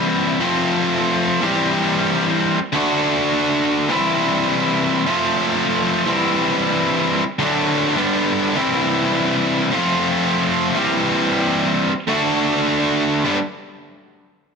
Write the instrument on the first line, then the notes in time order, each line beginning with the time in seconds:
distorted electric guitar
Already playing: C3 E3 G3 C4 E4
0.40 F3 A3 C4 F4
1.42 E3 G3 C4 G4
2.72 D3 A3 D4 F#4
3.88 C3 E3 G3 C4 E4
5.06 F3 A3 C4 F4
6.06 E3 G3 C4 E4
7.39 D3 F#3 A3 D4
7.96 G2 D3 G3 B3 D4
8.55 C3 E3 G3 C4 E4
9.71 F3 A3 C4 F4
10.75 E3 G3 C4 G4
12.07 D3 A3 D4 F#4
13.24 G2 D3 G3 B3 D4